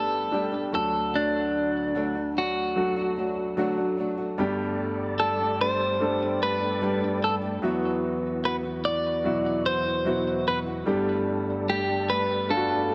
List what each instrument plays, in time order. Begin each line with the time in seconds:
Already playing: grand piano G1 G2 G3 A3 D4 G4, nylon-string guitar G3 A3 D4 G4, clean electric guitar A4
0.31 grand piano G3 A3 D4 G4, nylon-string guitar G3 A3 D4 G4
0.52 nylon-string guitar A3 D4 G4
0.72 grand piano D2 D3 F#3 A3 D4 F#4, nylon-string guitar F#3 A3 D4 F#4, clean electric guitar A4
0.93 nylon-string guitar A3 D4 F#4
1.13 nylon-string guitar D3 F#3 A3 D4 F#4, clean electric guitar D4
1.95 nylon-string guitar D3 F#3 A3 D4 F#4
2.15 nylon-string guitar A3 D4 F#4
2.35 nylon-string guitar F#3 A3 D4 F#4, clean electric guitar F#4
2.76 grand piano F#3 A3 D4 F#4
2.96 nylon-string guitar A3 D4 F#4
3.16 nylon-string guitar F#3 A3 D4 F#4
3.57 nylon-string guitar D3 F#3 A3 D4 F#4, grand piano F#3 A3 D4 F#4
3.77 nylon-string guitar A3 D4 F#4
3.97 nylon-string guitar F#3 A3 D4 F#4
4.18 nylon-string guitar A3 D4 F#4
4.38 grand piano G1 G2 G3 A3 D4 G4, tonewheel organ G2 G3 A4 D5, nylon-string guitar G3 A3 D4 G4
5.19 nylon-string guitar G3 A3 D4 G4, clean electric guitar A4
5.39 nylon-string guitar A3 D4 G4
5.59 nylon-string guitar G3 A3 D4 G4, clean electric guitar C5
6.00 grand piano G3 A3 D4 A4
6.20 nylon-string guitar A3 D4 G4
6.40 nylon-string guitar G3 A3 D4 G4, clean electric guitar B4
6.60 nylon-string guitar A3 D4 G4
6.81 nylon-string guitar G3 A3 D4 G4, grand piano G3 A3 D4 G4
7.01 nylon-string guitar A3 D4 G4
7.21 nylon-string guitar G3 A3 D4 G4, clean electric guitar A4
7.42 nylon-string guitar A3 D4 G4
7.62 tonewheel organ E2 E3 F#4, grand piano E2 F#3 B3 E4 F#4, nylon-string guitar E3 B3 E4 F#4
8.43 nylon-string guitar E3 B3 E4 F#4, clean electric guitar B4
8.63 nylon-string guitar B3 E4 F#4
8.84 nylon-string guitar E3 B3 E4 F#4, clean electric guitar D5
9.24 grand piano B2 F#3 E4 F#4
9.45 nylon-string guitar B3 E4 F#4
9.65 nylon-string guitar E3 B3 E4 F#4, clean electric guitar C5
9.85 nylon-string guitar B3 E4 F#4
10.05 grand piano B2 F#3 E4 F#4, nylon-string guitar E3 B3 E4 F#4
10.26 nylon-string guitar B3 E4 F#4
10.47 nylon-string guitar E3 B3 E4 F#4, clean electric guitar B4
10.66 nylon-string guitar B3 E4 F#4
10.86 grand piano G1 G2 G3 A3 D4 G4, tonewheel organ G2 G3 D4 A4, nylon-string guitar G3 A3 D4 G4
11.68 nylon-string guitar G3 A3 D4 G4, clean electric guitar G4
11.88 nylon-string guitar A3 D4 G4
12.08 nylon-string guitar G3 A3 D4 G4, clean electric guitar B4
12.49 grand piano G3 A3 D4 F4, clean electric guitar A4
12.57 grand piano F#4
12.69 nylon-string guitar A3 D4 G4
12.89 nylon-string guitar G3 A3 D4